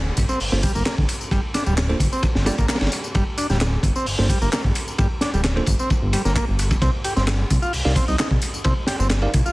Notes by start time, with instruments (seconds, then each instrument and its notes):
Already playing: analog synth bass D1, impact
0.17 analog synth bass G1, kick, open hi-hat, ride, tambourine
0.29 transistor combo organ C4, tambourine
0.40 analog synth bass G1, open hi-hat, tambourine
0.52 analog synth bass G1, tine electric piano A#3 D4 F4 A4 C5, snare
0.63 transistor combo organ G3, kick, open hi-hat, ride, tambourine
0.75 analog synth bass G1, transistor combo organ A#3, tambourine
0.86 transistor combo organ A#3, snare, clap, ride, tambourine
0.98 analog synth bass G1, kick
1.09 open hi-hat, ride, tambourine
1.21 tambourine
1.31 analog synth bass G1, transistor combo organ G3, kick, ride, tambourine
1.54 transistor combo organ D4, snare, open hi-hat, ride, tambourine
1.66 analog synth bass D1, transistor combo organ G3, tambourine
1.78 snare, clap, ride, tambourine
1.89 tine electric piano A#3 D4 F4 A4 C5, ride
2.00 analog synth bass G1, kick, open hi-hat, ride, tambourine
2.12 transistor combo organ C4, tambourine
2.23 kick, ride, tambourine
2.35 analog synth bass G1, snare
2.46 transistor combo organ G3, tine electric piano A#3 D4 F4 A4 D5, snare, open hi-hat, ride, tambourine
2.58 analog synth bass G1, transistor combo organ A#3, kick, tambourine
2.69 transistor combo organ A#3, snare, clap, ride, tambourine
2.75 snare, ride
2.81 analog synth bass G1, snare, ride
2.86 snare, ride
2.92 open hi-hat, ride, tambourine
3.04 tambourine
3.15 analog synth bass G1, transistor combo organ G3, kick, ride, tambourine
3.38 transistor combo organ D4, open hi-hat, ride, tambourine
3.50 analog synth bass D1, transistor combo organ G3, snare, tambourine
3.61 snare, clap, ride, tambourine
3.83 analog synth bass G1, kick, open hi-hat, ride, tambourine
3.96 transistor combo organ C4, tambourine
4.06 analog synth bass G1, open hi-hat, tambourine
4.19 analog synth bass G1, tine electric piano A#3 D4 F4 A4 C5, snare
4.29 transistor combo organ G3, kick, open hi-hat, ride, tambourine
4.42 analog synth bass G1, transistor combo organ A#3, tambourine
4.53 transistor combo organ A#3, snare, clap, ride, tambourine
4.64 analog synth bass G1, kick
4.75 open hi-hat, ride, tambourine
4.88 tambourine
4.98 analog synth bass G1, transistor combo organ G3, kick, ride, tambourine
5.21 transistor combo organ D4, snare, open hi-hat, ride, tambourine
5.33 analog synth bass D1, transistor combo organ G3, tambourine
5.44 snare, clap, ride, tambourine
5.56 tine electric piano A#3 D4 F4 A4 C5, ride
5.66 analog synth bass G1, kick, open hi-hat, ride, tambourine
5.79 transistor combo organ C4, tambourine
5.90 kick, ride, tambourine
6.02 analog synth bass G1
6.13 transistor combo organ G3, open hi-hat, ride, tambourine
6.25 analog synth bass G1, transistor combo organ A#3, snare, tambourine
6.35 transistor combo organ A#3, kick, clap, ride, tambourine
6.48 analog synth bass G1
6.59 open hi-hat, ride, tambourine
6.71 kick, ride, tambourine
6.82 analog synth bass C2, transistor combo organ C4, kick, ride, tambourine
7.04 transistor combo organ G4, open hi-hat, ride, tambourine
7.16 analog synth bass G1, transistor combo organ C4, snare, tambourine
7.27 snare, clap, ride, tambourine
7.50 analog synth bass C2, kick, open hi-hat, ride, tambourine
7.62 transistor combo organ F4, tambourine
7.73 analog synth bass C2, open hi-hat, tambourine
7.85 analog synth bass C2, tine electric piano D#4 G4 A#4 D5 F5, snare
7.96 transistor combo organ C4, kick, open hi-hat, ride, tambourine
8.08 analog synth bass C2, transistor combo organ D#4, tambourine
8.19 transistor combo organ D#4, snare, clap, ride, tambourine
8.31 analog synth bass C2, kick
8.42 open hi-hat, ride, tambourine
8.54 tambourine
8.64 analog synth bass C2, transistor combo organ C4, kick, ride, tambourine
8.87 transistor combo organ G4, snare, open hi-hat, ride, tambourine
8.99 analog synth bass G1, transistor combo organ C4, tambourine
9.10 snare, clap, ride, tambourine
9.22 tine electric piano D#4 G4 A#4 D5 F5, ride
9.34 analog synth bass C2, kick, open hi-hat, ride, tambourine
9.46 transistor combo organ F4, tambourine